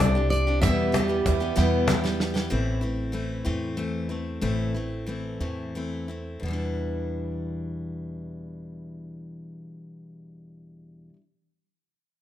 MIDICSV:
0, 0, Header, 1, 8, 480
1, 0, Start_track
1, 0, Key_signature, 1, "minor"
1, 0, Tempo, 625652
1, 486, Time_signature, 6, 3, 24, 8
1, 2407, Tempo, 643087
1, 3847, Tempo, 678733
1, 4807, Tempo, 697674
1, 8793, End_track
2, 0, Start_track
2, 0, Title_t, "Steel-string acoustic guitar"
2, 0, Program_c, 0, 25
2, 0, Note_on_c, 0, 74, 79
2, 223, Note_off_c, 0, 74, 0
2, 232, Note_on_c, 0, 74, 73
2, 469, Note_off_c, 0, 74, 0
2, 472, Note_on_c, 0, 76, 76
2, 1407, Note_off_c, 0, 76, 0
2, 8793, End_track
3, 0, Start_track
3, 0, Title_t, "Clarinet"
3, 0, Program_c, 1, 71
3, 0, Note_on_c, 1, 69, 102
3, 277, Note_off_c, 1, 69, 0
3, 482, Note_on_c, 1, 67, 79
3, 1651, Note_off_c, 1, 67, 0
3, 8793, End_track
4, 0, Start_track
4, 0, Title_t, "Steel-string acoustic guitar"
4, 0, Program_c, 2, 25
4, 0, Note_on_c, 2, 55, 55
4, 6, Note_on_c, 2, 60, 58
4, 8, Note_on_c, 2, 62, 58
4, 15, Note_on_c, 2, 67, 58
4, 105, Note_off_c, 2, 67, 0
4, 115, Note_on_c, 2, 67, 54
4, 117, Note_off_c, 2, 62, 0
4, 122, Note_off_c, 2, 55, 0
4, 122, Note_off_c, 2, 60, 0
4, 126, Note_on_c, 2, 62, 47
4, 131, Note_on_c, 2, 60, 37
4, 351, Note_off_c, 2, 67, 0
4, 358, Note_off_c, 2, 62, 0
4, 360, Note_on_c, 2, 67, 52
4, 364, Note_off_c, 2, 60, 0
4, 367, Note_on_c, 2, 62, 48
4, 373, Note_on_c, 2, 60, 40
4, 480, Note_on_c, 2, 40, 72
4, 483, Note_off_c, 2, 60, 0
4, 483, Note_off_c, 2, 67, 0
4, 483, Note_on_c, 2, 47, 78
4, 486, Note_off_c, 2, 62, 0
4, 486, Note_on_c, 2, 55, 78
4, 487, Note_on_c, 2, 52, 67
4, 489, Note_on_c, 2, 59, 71
4, 491, Note_on_c, 2, 67, 74
4, 698, Note_off_c, 2, 52, 0
4, 705, Note_off_c, 2, 55, 0
4, 707, Note_on_c, 2, 52, 58
4, 711, Note_off_c, 2, 59, 0
4, 714, Note_on_c, 2, 55, 56
4, 715, Note_off_c, 2, 67, 0
4, 720, Note_on_c, 2, 59, 56
4, 723, Note_off_c, 2, 40, 0
4, 724, Note_off_c, 2, 47, 0
4, 724, Note_on_c, 2, 67, 69
4, 820, Note_off_c, 2, 67, 0
4, 829, Note_off_c, 2, 59, 0
4, 829, Note_on_c, 2, 67, 47
4, 833, Note_off_c, 2, 55, 0
4, 836, Note_off_c, 2, 52, 0
4, 838, Note_on_c, 2, 59, 47
4, 842, Note_on_c, 2, 55, 45
4, 846, Note_on_c, 2, 52, 38
4, 1066, Note_off_c, 2, 67, 0
4, 1071, Note_off_c, 2, 59, 0
4, 1075, Note_on_c, 2, 67, 58
4, 1079, Note_off_c, 2, 55, 0
4, 1080, Note_on_c, 2, 59, 53
4, 1082, Note_off_c, 2, 52, 0
4, 1089, Note_on_c, 2, 55, 53
4, 1091, Note_on_c, 2, 52, 43
4, 1188, Note_off_c, 2, 52, 0
4, 1190, Note_off_c, 2, 55, 0
4, 1193, Note_off_c, 2, 67, 0
4, 1193, Note_on_c, 2, 40, 78
4, 1195, Note_off_c, 2, 59, 0
4, 1195, Note_on_c, 2, 47, 81
4, 1197, Note_on_c, 2, 52, 78
4, 1199, Note_on_c, 2, 55, 74
4, 1202, Note_on_c, 2, 67, 80
4, 1204, Note_on_c, 2, 59, 88
4, 1429, Note_off_c, 2, 52, 0
4, 1435, Note_off_c, 2, 55, 0
4, 1438, Note_off_c, 2, 59, 0
4, 1438, Note_on_c, 2, 52, 57
4, 1439, Note_off_c, 2, 40, 0
4, 1439, Note_off_c, 2, 47, 0
4, 1443, Note_off_c, 2, 67, 0
4, 1444, Note_on_c, 2, 55, 61
4, 1447, Note_on_c, 2, 59, 62
4, 1454, Note_on_c, 2, 67, 67
4, 1553, Note_off_c, 2, 67, 0
4, 1559, Note_off_c, 2, 59, 0
4, 1561, Note_off_c, 2, 52, 0
4, 1562, Note_on_c, 2, 67, 57
4, 1564, Note_off_c, 2, 55, 0
4, 1568, Note_on_c, 2, 59, 50
4, 1575, Note_on_c, 2, 55, 51
4, 1576, Note_on_c, 2, 52, 43
4, 1785, Note_off_c, 2, 67, 0
4, 1791, Note_off_c, 2, 59, 0
4, 1794, Note_on_c, 2, 67, 57
4, 1796, Note_off_c, 2, 55, 0
4, 1800, Note_on_c, 2, 59, 48
4, 1801, Note_off_c, 2, 52, 0
4, 1805, Note_on_c, 2, 55, 47
4, 1810, Note_on_c, 2, 52, 44
4, 1911, Note_off_c, 2, 52, 0
4, 1918, Note_on_c, 2, 45, 77
4, 1919, Note_off_c, 2, 67, 0
4, 1920, Note_off_c, 2, 55, 0
4, 1921, Note_on_c, 2, 52, 70
4, 1922, Note_off_c, 2, 59, 0
4, 1923, Note_on_c, 2, 57, 73
4, 1926, Note_on_c, 2, 64, 77
4, 1930, Note_on_c, 2, 60, 74
4, 2147, Note_off_c, 2, 64, 0
4, 2156, Note_on_c, 2, 64, 52
4, 2158, Note_off_c, 2, 60, 0
4, 2161, Note_off_c, 2, 45, 0
4, 2163, Note_off_c, 2, 52, 0
4, 2164, Note_off_c, 2, 57, 0
4, 2167, Note_on_c, 2, 60, 50
4, 2174, Note_on_c, 2, 57, 42
4, 2393, Note_off_c, 2, 57, 0
4, 2395, Note_on_c, 2, 52, 50
4, 2396, Note_off_c, 2, 60, 0
4, 2401, Note_off_c, 2, 64, 0
4, 2402, Note_on_c, 2, 57, 54
4, 2405, Note_on_c, 2, 60, 60
4, 2411, Note_on_c, 2, 64, 57
4, 2629, Note_off_c, 2, 64, 0
4, 2634, Note_off_c, 2, 60, 0
4, 2636, Note_off_c, 2, 52, 0
4, 2636, Note_off_c, 2, 57, 0
4, 2638, Note_on_c, 2, 64, 62
4, 2643, Note_on_c, 2, 60, 55
4, 2645, Note_on_c, 2, 57, 54
4, 2647, Note_on_c, 2, 52, 60
4, 2648, Note_on_c, 2, 45, 53
4, 2870, Note_off_c, 2, 52, 0
4, 2871, Note_off_c, 2, 57, 0
4, 2876, Note_off_c, 2, 64, 0
4, 2879, Note_off_c, 2, 60, 0
4, 2879, Note_on_c, 2, 52, 57
4, 2880, Note_on_c, 2, 57, 56
4, 2881, Note_off_c, 2, 45, 0
4, 2889, Note_on_c, 2, 60, 57
4, 2892, Note_on_c, 2, 64, 58
4, 3109, Note_off_c, 2, 64, 0
4, 3115, Note_off_c, 2, 60, 0
4, 3117, Note_off_c, 2, 52, 0
4, 3118, Note_off_c, 2, 57, 0
4, 3118, Note_on_c, 2, 64, 48
4, 3124, Note_on_c, 2, 60, 44
4, 3132, Note_on_c, 2, 57, 37
4, 3355, Note_off_c, 2, 57, 0
4, 3357, Note_off_c, 2, 60, 0
4, 3358, Note_off_c, 2, 64, 0
4, 3360, Note_on_c, 2, 45, 69
4, 3360, Note_on_c, 2, 52, 67
4, 3364, Note_on_c, 2, 57, 74
4, 3366, Note_on_c, 2, 60, 80
4, 3372, Note_on_c, 2, 64, 74
4, 3598, Note_off_c, 2, 64, 0
4, 3602, Note_off_c, 2, 45, 0
4, 3602, Note_off_c, 2, 52, 0
4, 3604, Note_off_c, 2, 57, 0
4, 3604, Note_off_c, 2, 60, 0
4, 3607, Note_on_c, 2, 64, 49
4, 3617, Note_on_c, 2, 60, 47
4, 3623, Note_on_c, 2, 57, 44
4, 3843, Note_off_c, 2, 57, 0
4, 3846, Note_on_c, 2, 52, 51
4, 3849, Note_off_c, 2, 64, 0
4, 3850, Note_off_c, 2, 60, 0
4, 3852, Note_on_c, 2, 57, 51
4, 3859, Note_on_c, 2, 60, 49
4, 3864, Note_on_c, 2, 64, 51
4, 4078, Note_off_c, 2, 64, 0
4, 4080, Note_off_c, 2, 60, 0
4, 4081, Note_off_c, 2, 52, 0
4, 4082, Note_off_c, 2, 57, 0
4, 4086, Note_on_c, 2, 64, 60
4, 4088, Note_on_c, 2, 60, 54
4, 4091, Note_on_c, 2, 57, 49
4, 4094, Note_on_c, 2, 52, 47
4, 4096, Note_on_c, 2, 45, 46
4, 4322, Note_off_c, 2, 64, 0
4, 4323, Note_off_c, 2, 52, 0
4, 4323, Note_off_c, 2, 60, 0
4, 4324, Note_off_c, 2, 57, 0
4, 4327, Note_off_c, 2, 45, 0
4, 4331, Note_on_c, 2, 52, 50
4, 4335, Note_on_c, 2, 57, 50
4, 4340, Note_on_c, 2, 60, 53
4, 4345, Note_on_c, 2, 64, 53
4, 4556, Note_off_c, 2, 64, 0
4, 4565, Note_off_c, 2, 60, 0
4, 4565, Note_on_c, 2, 64, 42
4, 4567, Note_off_c, 2, 52, 0
4, 4569, Note_off_c, 2, 57, 0
4, 4574, Note_on_c, 2, 60, 38
4, 4582, Note_on_c, 2, 57, 36
4, 4787, Note_on_c, 2, 40, 51
4, 4808, Note_off_c, 2, 64, 0
4, 4811, Note_on_c, 2, 47, 53
4, 4812, Note_off_c, 2, 60, 0
4, 4816, Note_off_c, 2, 57, 0
4, 4829, Note_on_c, 2, 52, 56
4, 4847, Note_on_c, 2, 55, 57
4, 4863, Note_on_c, 2, 62, 57
4, 4882, Note_on_c, 2, 64, 58
4, 8023, Note_off_c, 2, 40, 0
4, 8046, Note_off_c, 2, 47, 0
4, 8064, Note_off_c, 2, 52, 0
4, 8082, Note_off_c, 2, 55, 0
4, 8098, Note_off_c, 2, 62, 0
4, 8116, Note_off_c, 2, 64, 0
4, 8793, End_track
5, 0, Start_track
5, 0, Title_t, "Twelve-string acoustic guitar"
5, 0, Program_c, 3, 25
5, 0, Note_on_c, 3, 55, 60
5, 0, Note_on_c, 3, 60, 60
5, 0, Note_on_c, 3, 62, 63
5, 482, Note_off_c, 3, 55, 0
5, 491, Note_on_c, 3, 55, 75
5, 534, Note_off_c, 3, 62, 0
5, 538, Note_off_c, 3, 60, 0
5, 732, Note_on_c, 3, 59, 54
5, 959, Note_off_c, 3, 55, 0
5, 966, Note_off_c, 3, 59, 0
5, 969, Note_on_c, 3, 55, 56
5, 974, Note_on_c, 3, 59, 61
5, 980, Note_on_c, 3, 64, 59
5, 1197, Note_off_c, 3, 64, 0
5, 1206, Note_on_c, 3, 64, 62
5, 1972, Note_off_c, 3, 64, 0
5, 1974, Note_off_c, 3, 55, 0
5, 1977, Note_off_c, 3, 59, 0
5, 8793, End_track
6, 0, Start_track
6, 0, Title_t, "Upright bass"
6, 0, Program_c, 4, 32
6, 0, Note_on_c, 4, 36, 86
6, 457, Note_off_c, 4, 36, 0
6, 486, Note_on_c, 4, 40, 94
6, 941, Note_off_c, 4, 40, 0
6, 969, Note_on_c, 4, 40, 74
6, 1195, Note_off_c, 4, 40, 0
6, 1210, Note_on_c, 4, 40, 84
6, 1896, Note_off_c, 4, 40, 0
6, 1929, Note_on_c, 4, 33, 84
6, 2614, Note_off_c, 4, 33, 0
6, 2649, Note_on_c, 4, 40, 76
6, 3332, Note_off_c, 4, 40, 0
6, 3365, Note_on_c, 4, 33, 75
6, 4057, Note_off_c, 4, 33, 0
6, 4083, Note_on_c, 4, 40, 68
6, 4779, Note_off_c, 4, 40, 0
6, 4807, Note_on_c, 4, 40, 63
6, 8014, Note_off_c, 4, 40, 0
6, 8793, End_track
7, 0, Start_track
7, 0, Title_t, "Cajon"
7, 0, Note_on_c, 9, 36, 86
7, 0, Note_on_c, 9, 38, 82
7, 76, Note_off_c, 9, 36, 0
7, 76, Note_off_c, 9, 38, 0
7, 481, Note_on_c, 9, 36, 73
7, 481, Note_on_c, 9, 38, 23
7, 558, Note_off_c, 9, 36, 0
7, 558, Note_off_c, 9, 38, 0
7, 605, Note_on_c, 9, 38, 25
7, 682, Note_off_c, 9, 38, 0
7, 722, Note_on_c, 9, 38, 76
7, 799, Note_off_c, 9, 38, 0
7, 966, Note_on_c, 9, 36, 72
7, 966, Note_on_c, 9, 38, 25
7, 1043, Note_off_c, 9, 36, 0
7, 1043, Note_off_c, 9, 38, 0
7, 1088, Note_on_c, 9, 38, 24
7, 1164, Note_off_c, 9, 38, 0
7, 1439, Note_on_c, 9, 38, 87
7, 1516, Note_off_c, 9, 38, 0
7, 1561, Note_on_c, 9, 38, 25
7, 1638, Note_off_c, 9, 38, 0
7, 8793, End_track
8, 0, Start_track
8, 0, Title_t, "Drums"
8, 3, Note_on_c, 9, 42, 49
8, 80, Note_off_c, 9, 42, 0
8, 248, Note_on_c, 9, 42, 46
8, 324, Note_off_c, 9, 42, 0
8, 486, Note_on_c, 9, 36, 83
8, 487, Note_on_c, 9, 42, 62
8, 562, Note_off_c, 9, 36, 0
8, 563, Note_off_c, 9, 42, 0
8, 726, Note_on_c, 9, 42, 48
8, 803, Note_off_c, 9, 42, 0
8, 965, Note_on_c, 9, 36, 64
8, 966, Note_on_c, 9, 42, 45
8, 1042, Note_off_c, 9, 36, 0
8, 1042, Note_off_c, 9, 42, 0
8, 1207, Note_on_c, 9, 38, 48
8, 1284, Note_off_c, 9, 38, 0
8, 1449, Note_on_c, 9, 38, 58
8, 1525, Note_off_c, 9, 38, 0
8, 1570, Note_on_c, 9, 38, 54
8, 1647, Note_off_c, 9, 38, 0
8, 1690, Note_on_c, 9, 38, 68
8, 1766, Note_off_c, 9, 38, 0
8, 1810, Note_on_c, 9, 38, 65
8, 1887, Note_off_c, 9, 38, 0
8, 8793, End_track
0, 0, End_of_file